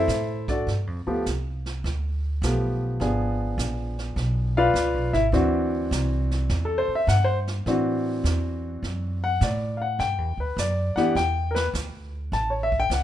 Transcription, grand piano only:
0.00 0.45 E4 medium
0.00 0.45 A4 medium
0.00 0.44 C5 medium
0.00 0.44 E5 loud
0.49 0.67 D4 medium
0.49 0.67 F#4 medium
0.49 0.67 A4 medium
0.49 0.67 D5 medium
1.07 1.24 F3 medium
1.07 1.24 A3 medium
1.07 1.24 B3 medium
1.07 1.24 G4 medium
2.44 2.99 F3 medium
2.44 3.01 A3 soft
2.44 3.00 B3 medium
2.44 3.01 G4 medium
3.00 4.64 F3 medium
3.00 4.64 B3 medium
3.00 4.64 D4 medium
3.00 4.64 G#4 medium
4.57 5.11 F4 medium
4.57 5.11 B4 medium
4.57 5.11 D5 medium
4.57 5.11 F5 loud
5.13 5.25 E4 medium
5.13 5.25 E5 medium
5.33 6.97 E3 medium
5.33 6.97 C4 medium
5.33 6.97 D4 medium
5.33 6.97 F#4 medium
6.65 6.86 A4 medium
6.78 6.93 C5 loud
6.95 7.06 E5 loud
7.09 7.27 F#5 loud
7.24 7.37 C5 loud
7.67 9.30 E3 medium
7.67 9.30 C4 medium
7.67 9.30 D4 medium
7.67 9.31 F#4 medium
9.24 9.41 F#5 loud
9.43 9.80 D5 medium
9.77 9.80 F5 medium
9.82 9.99 F#5 medium
10.00 10.38 G5 loud
10.40 10.58 B4 medium
10.59 10.96 D5 medium
10.96 11.14 E3 medium
10.96 11.14 B3 medium
10.96 11.14 D4 medium
10.96 11.15 G4 medium
10.96 11.15 F#5 medium
11.16 11.54 G5 loud
11.51 11.53 A#4 medium
11.51 11.66 B4 medium
12.33 12.52 A5 medium
12.50 12.70 C#5 medium
12.63 12.77 E5 medium
12.80 12.90 G5 loud
12.93 13.03 F#5 medium

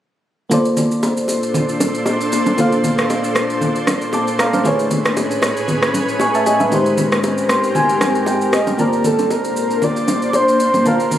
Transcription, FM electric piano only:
0.50 2.53 A#3 medium
0.50 2.54 F4 medium
0.50 2.54 A4 medium
0.50 2.55 C5 medium
0.54 2.55 D5 medium
2.56 4.60 A#3 medium
2.56 4.61 F4 medium
2.56 4.61 A4 medium
2.56 4.11 C5 medium
2.61 4.11 F5 medium
4.14 4.38 A5 medium
4.14 4.38 D6 medium
4.40 4.53 F5 medium
4.40 4.53 A#5 medium
4.54 4.78 C5 medium
4.54 4.78 F5 medium
4.63 6.42 A3 medium
4.63 6.42 E4 medium
4.63 6.43 G#4 medium
4.63 6.18 B4 medium
4.67 6.18 C#5 medium
6.21 6.34 G#5 medium
6.21 6.34 C#6 medium
6.35 6.46 E5 medium
6.35 6.46 A5 medium
6.46 6.60 D#5 medium
6.46 6.60 G#5 medium
6.61 6.85 B4 medium
6.61 6.85 E5 medium
6.70 8.74 G#3 medium
6.70 8.74 D#4 medium
6.70 8.75 G4 medium
6.70 8.75 A#4 medium
6.74 8.76 C5 medium
7.50 7.74 C6 medium
7.76 8.00 G#5 medium
8.02 8.25 G#5 medium
8.28 8.51 G5 medium
8.53 8.77 D#5 medium
8.77 10.81 A#3 medium
8.77 10.81 F4 medium
8.77 10.82 C5 medium
8.77 10.82 A5 medium
8.81 10.83 D5 medium
10.84 11.18 A#3 medium
10.84 11.18 F4 medium
10.84 11.18 C5 medium
10.84 11.18 A5 medium
10.88 11.18 F5 medium

